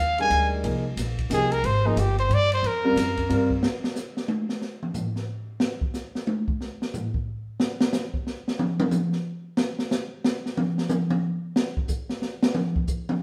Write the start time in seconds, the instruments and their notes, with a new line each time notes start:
Already playing: upright bass D#2, trumpet F5
0.18 grand piano D#3 G3 G#3 D4, trumpet G#5, ride
0.30 upright bass D2, ride
0.64 upright bass C2, grand piano F3 A#3 D#4 G#4, ride
0.97 upright bass A#1, snare, hi-hat pedal, ride
1.18 kick, ride
1.30 upright bass C2, grand piano F3 A#3 D#4 G4, trumpet G#4, hi-hat pedal, ride
1.52 trumpet A#4, ride
1.64 upright bass G#1, trumpet C5, ride
1.85 grand piano F3 A#3 D#4 G#4, trumpet D#4
1.96 upright bass G1, trumpet G4, hi-hat pedal, ride
2.18 trumpet C5, ride
2.29 upright bass G2, ride
2.34 trumpet D5
2.52 trumpet C5, ride
2.63 upright bass F2, trumpet A#4, ride
2.84 grand piano G3 C4 F4 A#4
2.96 upright bass F#2, snare, hi-hat pedal, ride
3.17 kick, ride
3.29 upright bass G2, grand piano G3 C4 F4 A#4, ride
3.50 kick
3.63 snare
3.84 snare
3.96 snare, hi-hat pedal
4.17 snare
4.28 high tom
4.49 snare
4.62 snare
4.83 mid tom
4.94 floor tom, hi-hat pedal
5.16 snare
5.60 snare
5.81 kick
5.94 snare, hi-hat pedal
6.15 snare
6.27 high tom
6.48 kick
6.61 snare
6.82 snare
6.94 floor tom, hi-hat pedal
7.14 kick
7.60 snare
7.81 snare
7.93 snare, hi-hat pedal
8.14 kick
8.27 snare
8.48 snare
8.59 mid tom
8.80 mid tom
8.91 hi-hat pedal, mid tom
9.12 snare
9.57 snare
9.79 snare
9.91 snare, hi-hat pedal
10.24 snare
10.46 snare
10.57 mid tom
10.78 snare
10.89 hi-hat pedal, mid tom
11.10 mid tom
11.56 snare
11.77 kick
11.88 kick, hi-hat pedal
12.09 snare
12.22 snare
12.43 snare
12.55 mid tom
12.76 kick
12.87 kick, hi-hat pedal
13.09 mid tom